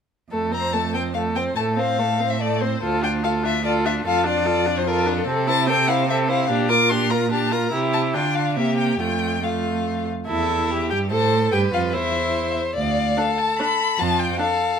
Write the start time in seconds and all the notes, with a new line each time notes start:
0.32 F2 A3 A4
0.52 C4 C5 A#5
0.73 A3 A4 A5
0.94 C4 C5 G5
1.14 A3 A4 F5
1.36 C4 C5 G5
1.56 A2 A3 A4 A5
1.77 C4 C5 F5
1.99 A3 A4
2.20 C4 C5
2.30 E5
2.41 A3 A4 D5
2.61 C4 C5
2.82 D2 F4 A4
3.03 D4 F4 G5
3.23 F4 A4 F5
3.43 D4 F4 E5
3.64 F4 A4 D5
3.85 D4 F4 E5
4.05 F2 F4 A4 F5
4.25 D4 F4 D5
4.45 F4 A4
4.66 D4 F4
4.78 C5
4.86 F4 A4 A#4
5.06 D4 F4 A4
5.26 C3 C4 A4
5.47 E4 C5 A5
5.67 C4 A4 G5
5.88 E4 C5 F5
6.07 C4 A4 E5
6.28 E4 C5 F5
6.49 A#2 D4 G4
6.69 F4 A#4 D6
6.89 D4 G4 C6
7.10 F4 A#4 A#5
7.31 D4 G4 A5
7.51 F4 A#4 A#5
7.72 C3 E4 G4
7.93 A5
8.14 D3 D4 F4 G5
8.35 F5
8.57 C3 A#3 G4 E5
8.78 G5
8.99 F2 A3 F4 G5
9.42 A3 F4 F5
10.27 E2 E4 A4 E5
10.70 G4
10.90 G2 G4 G5
11.10 A2 A4 C5 A5
11.52 G2 G4 B4 G5
11.73 F2 F4 F5
11.93 E2 E4 C5 E5
12.75 D2 D5 F5
13.17 D4 A4
13.38 A5
13.59 D4 B5
13.98 F2 F4 A5
14.19 G5
14.39 D4 A4 F5